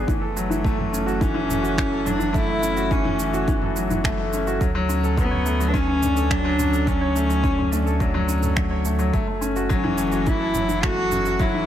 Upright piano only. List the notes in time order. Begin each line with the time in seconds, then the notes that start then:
Already playing: F#3 B3 G#4 B4
0.07 E3
0.21 A4
0.36 F#3
0.50 E3
0.64 A3
0.78 A3
0.92 C#4
1.06 F#4
1.21 E3
1.34 E3
1.48 A3
1.62 F#4
1.77 E3
1.90 A4
2.05 F#3
2.19 E3
2.33 A3
2.48 A3
2.62 C#4
2.76 F#4
2.90 E3
3.04 E3
3.19 A3
3.33 F#4
3.48 E3
3.62 A4
3.76 F#3
3.90 E3
4.04 A3
4.19 A3
4.33 C#4
4.47 F#4
4.61 F#3
4.75 F#3
4.89 C#4
5.03 A4
5.18 F#3
5.31 C#5
5.45 A3
5.60 F#3
5.74 C#4
5.87 C#4
6.02 D4
6.17 A4
6.31 F#3
6.45 F#3
6.59 C#4
6.72 A4
6.87 F#3
7.01 C#5
7.15 A3
7.29 F#3
7.43 C#4
7.58 C#4
7.72 D4
7.86 A4
8.00 F#3
8.14 F#3
8.28 C#4
8.42 A4
8.57 F#3
8.71 C#5
8.85 A3
8.99 F#3
9.13 A3
9.28 A3
9.41 C#4
9.56 F#4
9.69 F#3
9.84 E3
9.98 A3
10.12 F#4
10.26 E3
10.40 A4
10.54 F#3
10.68 E3
10.82 A3
10.97 A3
11.12 C#4
11.26 F#4
11.40 F#3
11.54 E3